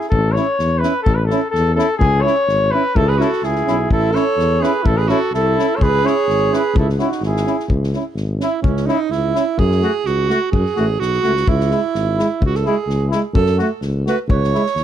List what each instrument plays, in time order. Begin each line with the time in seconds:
0.01 snare
0.09 tuba A1, flugelhorn A4, kick
0.32 flugelhorn C#5
0.36 euphonium C#4, trombone E4, snare
0.59 tuba E2, snare
0.78 trombone E4, flugelhorn B4
0.83 euphonium C#4, snare
1.02 tuba A1, flugelhorn A4
1.06 kick
1.15 flugelhorn B4
1.25 flugelhorn A4
1.30 euphonium C#4, trombone E4, snare
1.51 tuba E2, flugelhorn A4
1.55 snare
1.75 euphonium C#4, trombone E4, flugelhorn A4
1.79 snare
1.98 tuba C#2, flugelhorn G#4, kick
2.21 euphonium C#4, trombone E4, flugelhorn C#5
2.27 snare
2.47 tuba G#1, snare
2.71 euphonium C#4, trombone E4, flugelhorn B4
2.95 tuba C#2, alto saxophone E4, flugelhorn A4, kick
3.06 alto saxophone G#4, flugelhorn B4
3.17 euphonium C#4, trombone E4, alto saxophone F#4, snare
3.22 flugelhorn A4
3.33 snare
3.42 tuba C#2, alto saxophone E4, flugelhorn G#4, snare
3.55 snare
3.66 tuba B1, euphonium C#4, trombone E4, snare
3.90 tuba A1, alto saxophone E4, flugelhorn A4, kick
4.12 euphonium C#4, trombone E4, alto saxophone A4, flugelhorn C#5, snare
4.36 tuba E2, snare
4.60 euphonium C#4, trombone E4, alto saxophone G#4, flugelhorn B4, snare
4.83 tuba A1, alto saxophone E4, flugelhorn A4, kick
4.96 alto saxophone G#4, flugelhorn B4
5.07 euphonium C#4, trombone E4, alto saxophone F#4, flugelhorn A4, snare
5.32 tuba C2, alto saxophone E4, flugelhorn A4, snare
5.57 euphonium C#4, trombone E4, snare
5.76 tuba C#2, alto saxophone A4, flugelhorn C#5
5.81 alto saxophone G#4, flugelhorn B4, kick
6.04 euphonium C#4, trombone E4, alto saxophone G#4, flugelhorn C#5, snare
6.27 tuba G#1, snare
6.51 euphonium C#4, trombone E4, flugelhorn B4, snare
6.56 alto saxophone G#4
6.74 tuba C#2, flugelhorn A4, kick
6.79 alto saxophone E4
6.89 snare
6.98 euphonium C#4, trombone E4, flugelhorn F#4, snare
7.03 alto saxophone D#4
7.12 snare
7.21 tuba G#1, snare
7.25 alto saxophone E4, flugelhorn G#4
7.36 snare
7.46 euphonium C#4, trombone E4, snare
7.60 snare
7.68 tuba C#2, kick
7.83 snare
7.93 euphonium C#4, trombone E4, snare
8.15 tuba G#1, snare
8.39 euphonium C#4, alto saxophone E4, snare
8.43 trombone E4
8.62 tuba C#2, alto saxophone C#4, kick
8.77 snare
8.86 euphonium C#4, alto saxophone D#4, trombone E4, snare
9.10 tuba C#2, alto saxophone E4, snare
9.34 euphonium C#4, trombone E4, snare
9.57 tuba F#2, alto saxophone G#4, kick
9.71 snare
9.81 euphonium A3, trombone F#4, snare
10.05 tuba C#2, alto saxophone F#4, snare
10.29 euphonium A3, trombone F#4, snare
10.51 tuba F#2, alto saxophone G#4, kick
10.66 snare
10.76 tuba A1, euphonium A3, trombone F#4, snare
11.00 tuba B1, alto saxophone F#4, snare
11.13 snare
11.23 tuba C#2, euphonium A3, trombone F#4, snare
11.37 snare
11.47 tuba C#2, alto saxophone E4, kick
11.60 snare
11.71 euphonium G#3, trombone E4, snare
11.95 tuba G#1, snare
12.18 euphonium G#3, trombone E4, snare
12.41 tuba C#2, kick
12.45 alto saxophone F#4
12.55 alto saxophone A4, snare
12.65 euphonium G#3, trombone E4, alto saxophone G#4, snare
12.87 tuba C#2, snare
13.10 euphonium G#3, trombone E4, snare
13.34 tuba F#2, alto saxophone A4, kick
13.46 snare
13.58 euphonium A3, trombone F#4, snare
13.81 tuba C#2, snare
14.06 euphonium A3, trombone F#4, alto saxophone B4, snare
14.28 tuba C#2, alto saxophone C#5, kick
14.44 snare
14.53 euphonium G#3, trombone E4, snare
14.66 snare
14.75 tuba D#2, snare